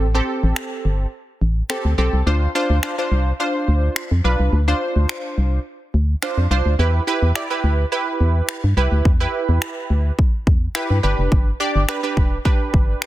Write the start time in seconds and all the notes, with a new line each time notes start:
0.00 A1
0.14 C4 G4 A4
0.43 A1
0.56 finger snap
0.85 G1
1.41 A1
1.69 C4 G4 A4, finger snap
1.85 D2
1.98 B1 C4 G4 A4
2.13 C2
2.26 D2 D4 F4 C5
2.55 D4 F4 C5
2.70 D2
2.83 D4 F4 C5, finger snap
2.98 D4 F4 C5
3.11 C2
3.40 D4 F4 C5
3.68 D2
3.96 finger snap
4.11 F2
4.24 B1 D4 F4 B4
4.40 C2
4.53 D2
4.68 D4 F4 C5
4.96 D2
5.09 finger snap
5.38 C2
5.94 D2
6.22 D4 F4 C5, finger snap
6.37 F2
6.51 C2 D4 F4 C5
6.66 D2
6.79 E2 E4 G4 B4
7.07 E4 G4 B4
7.22 E2
7.35 E4 G4 D5, finger snap
7.50 E4 G4 B4
7.64 D2
7.92 E4 G4 B4
8.20 E2
8.49 finger snap
8.64 G2
8.77 C2 E4 G4 B4
8.92 D2
9.05 E2, kick
9.20 E4 G4 B4
9.49 E2
9.62 finger snap
9.90 D2
10.19 kick
10.47 E2, kick
10.75 E4 G4 B4, finger snap
10.90 G2
11.03 G1 D4 G4 B4
11.19 F1
11.32 G1, kick
11.60 D4 G4 D5
11.75 G1
11.88 D4 G4 B4, finger snap
12.03 D4 G4 B4
12.17 E1, kick
12.45 D4 G4 B4, kick
12.74 G1, kick
13.02 finger snap